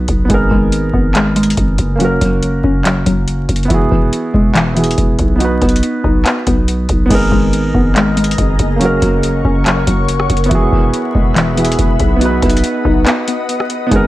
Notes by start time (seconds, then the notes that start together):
Already playing: B3 D#4 F#4 B4
0.08 B1, kick, closed hi-hat
0.25 B3 D#4
0.29 G#1 G#3 G#4, kick, closed hi-hat
0.34 A#4
0.51 G#1 G#3, kick
0.72 closed hi-hat
0.94 G#1 B3, kick
1.15 G#3, clap, closed hi-hat
1.36 G#3, closed hi-hat
1.43 closed hi-hat
1.50 closed hi-hat
1.57 G#1, kick, closed hi-hat
1.78 F#1, kick, closed hi-hat
1.96 A#3 C#4
2.00 F#3 F#4, closed hi-hat
2.05 A#4
2.21 F#1 F#3, kick, closed hi-hat
2.42 closed hi-hat
2.64 F#1 C#4, kick
2.85 F#3, clap, closed hi-hat
3.06 F#1 F#3, kick, closed hi-hat
3.28 closed hi-hat
3.49 F#1, kick, closed hi-hat
3.56 closed hi-hat
3.63 B3, closed hi-hat
3.68 E1 E3 E4 F#4, kick, closed hi-hat
3.74 G#4
3.91 E1 E3, kick
4.13 closed hi-hat
4.34 E1 G#3, kick
4.55 E3, clap, closed hi-hat
4.74 E3 B3 E4 F#4, closed hi-hat
4.79 G#4
4.84 closed hi-hat
4.91 closed hi-hat
4.98 E1, kick, closed hi-hat
5.19 B1, kick, closed hi-hat
5.36 B3 D#4
5.40 B3 F#4, closed hi-hat
5.45 B4
5.62 B1 B3, kick, closed hi-hat
5.69 closed hi-hat
5.76 closed hi-hat
5.83 closed hi-hat
6.04 B1 D#4, kick
6.25 B3, clap, closed hi-hat
6.47 B1 B3, kick, closed hi-hat
6.68 closed hi-hat
6.89 B1, kick, closed hi-hat
7.06 B3 D#4
7.10 G#1 G#3 B3 G#4 D#5 A#5, kick, closed hi-hat, crash
7.15 A#4
7.32 G#1 G#3, kick
7.53 closed hi-hat
7.74 G#1 B3, kick
7.96 G#3, clap, closed hi-hat
8.17 G#3, closed hi-hat
8.24 closed hi-hat
8.31 closed hi-hat
8.38 G#1, kick, closed hi-hat
8.59 F#1, kick, closed hi-hat
8.76 A#3 C#4
8.81 F#3 F#4 A#4 C#5 F#5 C#6, closed hi-hat
8.85 A#4
9.02 F#1 F#3, kick, closed hi-hat
9.23 closed hi-hat
9.45 F#1 C#4, kick
9.66 F#3, clap, closed hi-hat
9.87 F#1 F#3, kick, closed hi-hat
10.08 closed hi-hat
10.20 cross-stick
10.30 F#1, kick, closed hi-hat
10.37 closed hi-hat
10.44 B3, closed hi-hat
10.49 E1 E3 E4 F#4 G#4 E5 B5, kick, closed hi-hat
10.55 G#4
10.72 E1 E3, kick
10.94 closed hi-hat
11.15 E1 G#3, kick
11.36 E3, clap, closed hi-hat
11.55 E3 B3 E4 F#4, closed hi-hat
11.60 G#4
11.65 closed hi-hat
11.72 closed hi-hat
11.79 E1, kick, closed hi-hat
12.00 B1, kick, closed hi-hat
12.16 B3 D#4
12.21 B3 F#4 B4 D#5 F#5 D#6, closed hi-hat
12.25 B4
12.43 B1 B3, kick, closed hi-hat
12.50 closed hi-hat
12.57 closed hi-hat
12.64 closed hi-hat
12.85 B1 D#4, kick
13.06 B3, clap, closed hi-hat
13.28 B3, closed hi-hat
13.49 closed hi-hat
13.60 cross-stick
13.70 closed hi-hat
13.87 B3 D#4
13.91 G#1 G#3 B3 G#4 A#5, kick, closed hi-hat
13.96 A#4